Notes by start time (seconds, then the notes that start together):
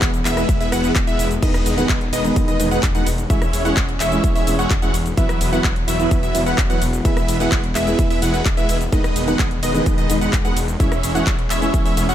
Already playing: E3 G#3 B3 E4 B4 F#5
0.02 E1, kick, clap, closed hi-hat, shaker
0.14 closed hi-hat, shaker
0.25 E1 G#3 B3 E4 B4 E5, clap, open hi-hat, shaker
0.37 cross-stick, closed hi-hat, shaker
0.49 E1, kick, closed hi-hat, shaker
0.60 G#3 B3 E4 B4 E5, open hi-hat, shaker
0.72 E1 G#3 B3 E4 B4 F#5, cross-stick, open hi-hat, shaker
0.84 closed hi-hat, shaker
0.96 E1, kick, clap, closed hi-hat, shaker
1.07 G#3 B3 E4 B4 E5, closed hi-hat, shaker
1.19 E1, open hi-hat, shaker
1.31 closed hi-hat, shaker
1.42 E1 D#3 G#3 B3 D#4 B4 D#5, kick, closed hi-hat, crash, shaker
1.54 cross-stick, closed hi-hat, shaker
1.66 E1, open hi-hat, ride, shaker
1.77 D#3 G#3 B3 D#4 B4 F#5, closed hi-hat, shaker
1.89 E1, kick, clap, closed hi-hat, shaker
2.01 closed hi-hat
2.13 E1 G#3 B3 D#4 B4 D#5, open hi-hat, ride, shaker
2.24 D#3 G#3 B3 D#4, closed hi-hat, shaker
2.36 E1, kick, closed hi-hat, shaker
2.48 G#3 B3 D#4 B4 D#5, closed hi-hat, shaker
2.59 E1 D#3 G#3 B3 D#4, open hi-hat, ride, shaker
2.71 G#3 B3 D#4 B4 F#5, closed hi-hat, shaker
2.83 E1, kick, clap, closed hi-hat, shaker
2.94 D#3 G#3 B3 D#4 B4 F#5, closed hi-hat, shaker
3.07 E1, open hi-hat, ride, shaker
3.18 closed hi-hat, shaker
3.29 E1 E3 G#3 C#4 E4 C#5 E5, kick, closed hi-hat, shaker
3.42 cross-stick, closed hi-hat, shaker
3.53 E1, open hi-hat, ride, shaker
3.65 E3 G#3 C#4 E4 C#5 F#5, closed hi-hat, shaker
3.77 E1, kick, clap, closed hi-hat, shaker
3.89 closed hi-hat
4.00 E1 G#3 C#4 E4 C#5 E5, clap, open hi-hat, ride, shaker
4.11 E3 G#3 C#4 E4, closed hi-hat, shaker
4.24 E1, kick, closed hi-hat, shaker
4.35 G#3 C#4 E4 C#5 E5, open hi-hat, shaker
4.47 E1 E3 G#3 C#4 E4, open hi-hat, ride, shaker
4.59 G#3 C#4 E4 C#5 F#5, closed hi-hat, shaker
4.70 E1, kick, clap, closed hi-hat, shaker
4.82 E3 G#3 C#4 E4 C#5 F#5, closed hi-hat, shaker
4.94 E1, open hi-hat, ride, shaker
5.06 closed hi-hat, shaker
5.17 E1 E3 F#3 B3 E4 B4 E5, kick, closed hi-hat, shaker
5.29 cross-stick, closed hi-hat, shaker
5.41 E1, open hi-hat, ride, shaker
5.52 E3 F#3 B3 E4 B4 F#5, closed hi-hat, shaker
5.64 E1, kick, clap, closed hi-hat, shaker
5.76 closed hi-hat
5.88 E1 F#3 B3 E4 B4 E5, open hi-hat, ride, shaker
5.99 E3 F#3 B3 E4, closed hi-hat, shaker
6.11 E1, kick, closed hi-hat, shaker
6.23 F#3 B3 E4 B4 E5, closed hi-hat, shaker
6.34 E1 E3 F#3 B3 E4, open hi-hat, ride, shaker
6.46 F#3 B3 E4 B4 F#5, closed hi-hat, shaker
6.58 E1, kick, clap, closed hi-hat, shaker
6.69 E3 F#3 B3 E4 B4 F#5, closed hi-hat, shaker
6.82 E1, open hi-hat, ride, shaker
6.93 closed hi-hat, shaker
7.04 E1 E3 G#3 B3 E4 B4 E5, kick, closed hi-hat, shaker
7.17 cross-stick, closed hi-hat, shaker
7.28 E1, open hi-hat, ride, shaker
7.40 E3 G#3 B3 E4 B4 F#5, closed hi-hat, shaker
7.52 E1, kick, clap, closed hi-hat, shaker
7.64 closed hi-hat
7.75 E1 G#3 B3 E4 B4 E5, clap, open hi-hat, ride, shaker
7.86 E3 G#3 B3 E4, closed hi-hat, shaker
7.99 E1, kick, closed hi-hat, shaker
8.10 G#3 B3 E4 B4 E5, open hi-hat, shaker
8.22 E1 E3 G#3 B3 E4 B4 F#5, open hi-hat, ride, shaker
8.34 closed hi-hat, shaker
8.45 E1, kick, clap, closed hi-hat, shaker
8.57 E3 G#3 B3 E4 B4 E5, closed hi-hat, shaker
8.69 E1, open hi-hat, ride, shaker
8.81 closed hi-hat, shaker
8.92 E1 D#3 G#3 B3 D#4 B4 D#5, kick, closed hi-hat, shaker
9.04 cross-stick, closed hi-hat, shaker
9.16 E1, open hi-hat, ride, shaker
9.27 D#3 G#3 B3 D#4 B4 F#5, closed hi-hat, shaker
9.39 E1, kick, clap, closed hi-hat, shaker
9.51 closed hi-hat
9.63 E1 G#3 B3 D#4 B4 D#5, open hi-hat, ride, shaker
9.74 D#3 G#3 B3 D#4, closed hi-hat, shaker
9.86 E1, kick, closed hi-hat, shaker
9.98 G#3 B3 D#4 B4 D#5, closed hi-hat, shaker
10.09 E1 D#3 G#3 B3 D#4, open hi-hat, ride, shaker
10.21 G#3 B3 D#4 B4 F#5, closed hi-hat, shaker
10.33 E1, kick, clap, closed hi-hat, shaker
10.44 D#3 G#3 B3 D#4 B4 F#5, closed hi-hat, shaker
10.57 E1, open hi-hat, ride, shaker
10.68 closed hi-hat, shaker
10.79 E1 E3 G#3 C#4 E4 C#5 E5, kick, closed hi-hat, shaker
10.92 cross-stick, closed hi-hat, shaker
11.03 E1, open hi-hat, ride, shaker
11.15 E3 G#3 C#4 E4 C#5 F#5, closed hi-hat, shaker
11.27 E1, kick, clap, closed hi-hat, shaker
11.39 closed hi-hat
11.50 E1 G#3 C#4 E4 C#5 E5, clap, open hi-hat, ride, shaker
11.61 E3 G#3 C#4 E4, closed hi-hat, shaker
11.74 E1, kick, closed hi-hat, shaker
11.85 G#3 C#4 E4 C#5 E5, open hi-hat, shaker
11.97 E1 E3 G#3 C#4 E4, open hi-hat, ride, shaker
12.09 G#3 C#4 E4 C#5 F#5, closed hi-hat, shaker